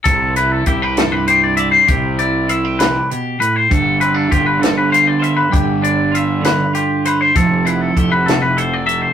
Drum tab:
HH |xxxxxx|xxxxxx|xxxxxx|xxxxxx|
SD |---o--|---o--|---o--|---o--|
BD |o-o---|o-----|o-o---|o-----|

HH |xxxxxx|
SD |---o--|
BD |o-o---|